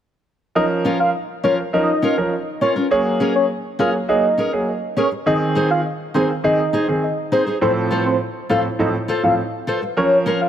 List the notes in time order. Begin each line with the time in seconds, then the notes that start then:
0.55 F3 C#4 A#4 D#5
0.85 C#4 F4 A#4
1.00 F5
1.44 F3 C#4 F4 A#4 C#5
1.73 F3 C#4 A#4 D#5
2.02 C#4 F4 A#4
2.17 F3 C#4 A#4
2.61 C#4 F4 A#4 C#5
2.76 C#4 F4 A#4
2.91 F#3 A#3 G#4 C#5
3.20 C#4 G#4 A#4
3.35 C#5
3.79 F#3 A#3 C#4 G#4 A#4 F5
4.08 F#3 A#3 G#4 D#5
4.38 C#4 G#4 A#4
4.52 F#3 A#3 G#4
4.97 C#4 G#4 A#4 C#5
5.11 muted steel-string acoustic guitar stroke
5.26 D#3 C4 G#4 D#5
5.55 D#4 G#4 C5
5.71 F5
6.14 D#3 C4 D#4 G#4 C5
6.44 D#3 C4 G#4 D#5
6.73 D#4 G#4 C5
6.88 D#3 C4 G#4
7.32 D#4 G#4 C5
7.46 D#4 G#4 C5
7.61 A2 F3 C4 A4 C5
7.91 F4 A4 C5
8.06 C5
8.49 A2 F3 C4 F4 A4 C5 F5
8.79 A2 F3 C4 A4 D#5
9.08 F4 A4 C5
9.23 A2 F3 C4 A4 F5
9.67 F4 A4 C5
9.82 muted steel-string acoustic guitar stroke
9.97 F3 C#4 A#4 C#5
10.26 C#4 F4 A#4
10.41 F5